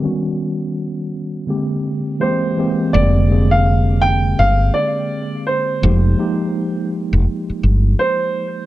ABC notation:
X:1
M:4/4
L:1/16
Q:"Swing 16ths" 1/4=83
K:Bbmix
V:1 name="Upright piano"
z12 c4 | d3 f3 g2 f2 d4 c2- | c6 z6 c4 |]
V:2 name="Tine electric piano"
[E,G,=B,_D^F]6 z2 [=D,A,_B,CG]4 [=E,A,B,CG]2 [E,A,B,CG]2 | [D,A,B,CG]2 [D,A,B,CA]6 z8 | [F,A,B,EG]2 [F,A,B,EG]6 z8 |]
V:3 name="Fretless electric bass" clef=bass
z16 | F,,,8 G,,,2 z6 | F,,,2 z4 z F,,, z2 G,,,2 z4 |]